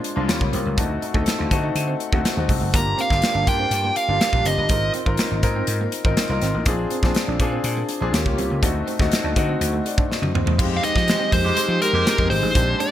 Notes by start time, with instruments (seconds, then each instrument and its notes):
Already playing: grand piano G#3 C4 D4 F4
0.04 muted clean electric guitar stroke, closed hi-hat
0.16 slap bass C2, grand piano G#3 C4 D4 F4, clean electric guitar D4
0.28 slap bass D#2, grand piano G3 A#3 C#4 F4, muted clean electric guitar stroke, snare, closed hi-hat
0.40 slap bass C#2, grand piano G3 A#3 C#4 F4, kick
0.53 slap bass C2, clean electric guitar C4, closed hi-hat
0.66 slap bass C#2, clean electric guitar A#3
0.77 slap bass D2, grand piano A3 C4 D#4 F#4, clean electric guitar D4, kick, closed hi-hat
0.90 muted clean electric guitar stroke
1.02 clean electric guitar D#4, closed hi-hat
1.14 slap bass D2, grand piano A3 C4 D#4 A4, kick
1.26 snare, closed hi-hat
1.39 slap bass D2, clean electric guitar F4
1.51 slap bass D3, grand piano A3 C4 D#4 F#4, muted clean electric guitar stroke, kick, closed hi-hat
1.64 clean electric guitar D#4
1.75 slap bass D3, closed hi-hat
1.88 clean electric guitar C4
2.00 muted clean electric guitar stroke, closed hi-hat
2.12 slap bass D2, grand piano A3 C4 D#4 F#4, clean electric guitar C4, kick
2.24 muted clean electric guitar stroke, snare, closed hi-hat
2.37 slap bass D#2, grand piano A3 C4 D#4 F#4
2.49 slap bass C2, clean electric guitar G#3, kick, open hi-hat
2.61 slap bass F#1, clean electric guitar A3
2.73 slap bass G1, clean electric guitar A#3, grand piano A#3 D4 F4 G4, lead electric guitar A#5, kick, closed hi-hat
2.86 muted clean electric guitar stroke
2.98 clean electric guitar C4, lead electric guitar F5, closed hi-hat
3.10 slap bass G1, grand piano A#3 D4 F4 G4, kick, snare
3.22 snare, closed hi-hat
3.35 slap bass G1, clean electric guitar D4
3.47 slap bass G2, grand piano A#3 D4 F4 G4, lead electric guitar G5, kick, closed hi-hat
3.59 clean electric guitar C4
3.71 slap bass G2, closed hi-hat
3.84 clean electric guitar A#3
3.96 lead electric guitar F5, muted clean electric guitar stroke, closed hi-hat
4.08 slap bass G1, grand piano A#3 D4 F4 G4, clean electric guitar D4
4.21 lead electric guitar F5, muted clean electric guitar stroke, snare, closed hi-hat
4.33 slap bass A#1, grand piano A#3 D4 F4 G4, kick
4.45 slap bass F#1, clean electric guitar C4, lead electric guitar D#5, closed hi-hat
4.57 slap bass G1, clean electric guitar A#3
4.69 slap bass G#1, clean electric guitar G#3, grand piano C4 D#4 F4 A#4, kick, closed hi-hat
4.83 muted clean electric guitar stroke
4.94 clean electric guitar C4, closed hi-hat
5.06 slap bass G#1, grand piano C4 D#4 F4 A#4, kick
5.17 snare, closed hi-hat
5.31 slap bass G#1, clean electric guitar D#4
5.43 slap bass G#2, grand piano C4 D#4 F4 A#4, muted clean electric guitar stroke, kick, closed hi-hat
5.56 clean electric guitar C4
5.67 slap bass G#2, closed hi-hat
5.81 clean electric guitar A#3
5.92 muted clean electric guitar stroke, closed hi-hat
6.05 slap bass G#1, grand piano C4 D#4 F4 A#4, clean electric guitar D#4, kick
6.17 muted clean electric guitar stroke, snare, closed hi-hat
6.29 slap bass C2, grand piano C4 D#4 F4 A#4
6.42 slap bass G#1, clean electric guitar C4, snare, closed hi-hat
6.54 slap bass A1, clean electric guitar A#3
6.66 slap bass A#1, clean electric guitar A#3, grand piano C4 D4 F4 G#4, kick, closed hi-hat
6.79 muted clean electric guitar stroke
6.91 clean electric guitar C4, closed hi-hat
7.03 slap bass A#1, grand piano C4 D4 F4 G#4, kick, snare
7.15 snare, closed hi-hat
7.28 slap bass A#1, clean electric guitar D4
7.40 slap bass A#2, grand piano C4 D4 F4 G#4, muted clean electric guitar stroke, kick, closed hi-hat
7.52 clean electric guitar C4
7.64 slap bass A#2, closed hi-hat
7.77 clean electric guitar A#3
7.89 muted clean electric guitar stroke, closed hi-hat
8.01 slap bass A#1, grand piano C4 D4 F4 G#4, clean electric guitar D4
8.13 slap bass D#2, grand piano A#3 C#4 F4 G4, muted clean electric guitar stroke, snare, closed hi-hat
8.26 slap bass C#2, grand piano A#3 C#4 F4 G4, kick
8.38 slap bass C2, clean electric guitar C4, closed hi-hat
8.50 slap bass C#2, clean electric guitar A#3
8.62 slap bass D2, grand piano A3 C4 D#4 F#4, clean electric guitar D4, kick, closed hi-hat
8.75 muted clean electric guitar stroke
8.87 clean electric guitar C4, closed hi-hat
8.99 slap bass D2, grand piano A3 C4 D#4 F#4, kick, snare
9.12 snare, closed hi-hat
9.24 slap bass D2, clean electric guitar D4
9.36 slap bass D3, grand piano A3 C4 D#4 F#4, muted clean electric guitar stroke, kick, closed hi-hat
9.49 clean electric guitar C4
9.61 slap bass D2, closed hi-hat
9.73 clean electric guitar A3
9.85 grand piano F#4 D5, muted clean electric guitar stroke, closed hi-hat
9.98 clean electric guitar D4, kick
10.10 grand piano F#4 D#5, muted clean electric guitar stroke, snare
10.22 slap bass F#2, high tom
10.35 slap bass D#2, clean electric guitar C4, grand piano D#4 C5, mid tom
10.46 slap bass E2, clean electric guitar A3, floor tom
10.58 slap bass F2, analog synth pad F3 G#3 D#4 G4, grand piano G#3 C4 D#4 G4, clean electric guitar F4, kick, crash
10.71 muted clean electric guitar stroke
10.77 lead electric guitar F5
10.83 clean electric guitar D#4, lead electric guitar D#5, closed hi-hat
10.96 slap bass F3, kick, snare
11.08 grand piano G#3 C4 D#4 G4, muted clean electric guitar stroke, snare, closed hi-hat
11.20 clean electric guitar C4
11.32 slap bass F2, clean electric guitar A#3, lead electric guitar C5, kick, open hi-hat
11.45 horn section G#3 G4 C5, grand piano G#3 C4 D#4 G4
11.56 clean electric guitar G#3, horn section G#3 G4 C5, muted slap bass stroke, closed hi-hat
11.68 slap bass F3
11.81 grand piano G#3 C4 D#4 G4, lead electric guitar A#4, muted clean electric guitar stroke, closed hi-hat
11.93 slap bass F2, horn section G#3 G4 C5, clean electric guitar A#3
12.06 clean electric guitar C4, snare, closed hi-hat
12.18 slap bass F2, grand piano G#3 C4 D#4 G#4, muted clean electric guitar stroke, kick
12.30 slap bass G#1, lead electric guitar C5, open hi-hat
12.42 slap bass A1, clean electric guitar G#3
12.54 slap bass A#1, grand piano G#3 C4 D4 G4, analog synth pad G#3 A#3 D4, clean electric guitar A#3, kick, closed hi-hat
12.67 muted clean electric guitar stroke
12.79 clean electric guitar D4, lead electric guitar D5, closed hi-hat